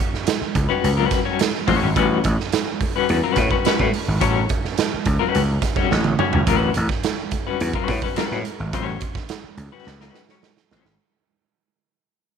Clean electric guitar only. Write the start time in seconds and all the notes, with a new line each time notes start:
0.69 G3 C#4 F#4 B4
0.97 G3 C#4 F#4 B4
1.25 G3 C#4 F#4 C#5
1.67 G3 C#4 F#4 C#5
1.96 G3 C#4 F#4 B4
2.96 G3 C#4 F#4 B4
3.24 G3 C#4 F#4 B4
3.51 G3 C#4 F#4 B4
3.66 G3 C#4 F#4 B4
4.21 G3 C#4 F#4 C#5
5.19 G3 C#4 F#4 B4
5.77 G3 C#4 F#4 C#5
6.19 G3 C#4 F#4 C#5
6.47 G3 C#4 F#4 B4
7.47 G3 C#4 F#4 B4
7.75 G3 C#4 F#4 B4
8.03 G3 C#4 F#4 B4
8.16 G3 C#4 F#4 B4
8.73 G3 C#4 F#4 C#5
9.72 G3 C#4 F#4 B4
10.01 G3 C#4 F#4 B4
10.30 G3 C#4 F#4 C#5
10.72 G3 C#4 F#4 C#5